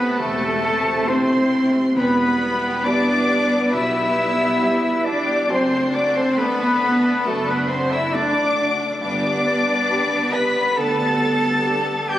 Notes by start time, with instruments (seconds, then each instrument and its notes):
Already playing: grand piano A2 C3 A3 E4, viola section C3 A3, cello section B3, french horn section B3, cor anglais B3, violin section C4 A4 B5, clarinet B4, flute B4
0.18 double bass section E1, grand piano E3, cello section A3, violin section A3 A5, french horn section A3, cor anglais A3, clarinet A4, flute A4
0.40 violin section C4
0.60 violin section E4
0.84 violin section C4
1.07 violin section A3 C6, grand piano A3 C4 E4, cello section C4, cor anglais C4, french horn section C4, clarinet C5, flute C5
1.28 violin section C4
1.50 violin section E4
1.73 violin section C4
1.95 double bass section E1, grand piano E2, violin section G3 B4 B5, viola section G3 B3, cello section B3, cor anglais B3, french horn section B3, flute B4, clarinet B4
2.18 violin section B3
2.40 violin section E4
2.62 violin section G4
2.84 grand piano G3 B3 E4, cello section D4, french horn section D4, cor anglais D4, violin section E4 D6, clarinet D5, flute D5
3.05 violin section B3
3.28 violin section G3
3.49 violin section B3
3.71 double bass section B1, grand piano B2, violin section E4 E6, cello section E4, cor anglais E4, french horn section E4, flute E5, clarinet E5
3.94 violin section G4
4.15 violin section E4
4.38 violin section B3
4.59 violin section G3, grand piano G3 B3 E4
4.82 violin section B3
5.04 cello section D4, cor anglais D4, french horn section D4, violin section E4 D6, flute D5, clarinet D5
5.26 violin section G4
5.48 double bass section F#1, grand piano F#2, violin section A3 A4 C6, viola section A3 D4, cello section C4, french horn section C4, cor anglais C4, clarinet C5, flute C5
5.72 violin section D4
5.93 cello section D4, french horn section D4, cor anglais D4, violin section F#4 D6, flute D5, clarinet D5
6.15 cello section C4, french horn section C4, cor anglais C4, violin section D4 C6, clarinet C5, flute C5
6.37 grand piano A3 D4 A4, violin section A3 B5, french horn section B3, cello section B3, cor anglais B3, clarinet B4, flute B4
6.60 violin section D4
6.82 violin section F#4
7.05 violin section D4
7.25 double bass section F#1, grand piano F#3, violin section A3 A5, french horn section A3, cello section A3, cor anglais A3, flute A4, clarinet A4
7.47 french horn section B3, cello section B3, cor anglais B3, violin section D4 B5, clarinet B4, flute B4
7.68 cello section C4, cor anglais C4, french horn section C4, violin section F#4 C6, clarinet C5
7.73 flute C5
7.90 violin section D4 E6, cello section E4, french horn section E4, cor anglais E4, clarinet E5, flute E5
8.10 violin section A3 D6, grand piano A3 D4 A4, cello section D4, cor anglais D4, french horn section D4, clarinet D5
8.16 flute D5
8.34 violin section D4
8.54 violin section F#4
8.78 violin section D4
8.99 double bass section G1, grand piano G2, violin section G3 B4 D6, viola section G3 B3, cello section D4, french horn section D4, cor anglais D4, clarinet D5, flute D5
9.23 violin section B3
9.45 violin section D4
9.67 violin section B3
9.89 violin section G3, grand piano B3 D4 G4
10.11 violin section B3
10.32 violin section D4 B6, cello section B4, french horn section B4, cor anglais B4, clarinet B5, flute B5
10.54 violin section B3
10.76 double bass section D2, grand piano D3, violin section G3 A6, french horn section A4, cello section A4, cor anglais A4, clarinet A5, flute A5
10.98 violin section B3
11.21 violin section D4
11.42 violin section B3
11.63 violin section G3, grand piano B3 D4 G4
11.85 violin section B3
12.07 violin section D4 G6, french horn section G4, cello section G4, cor anglais G4, clarinet G5, flute G5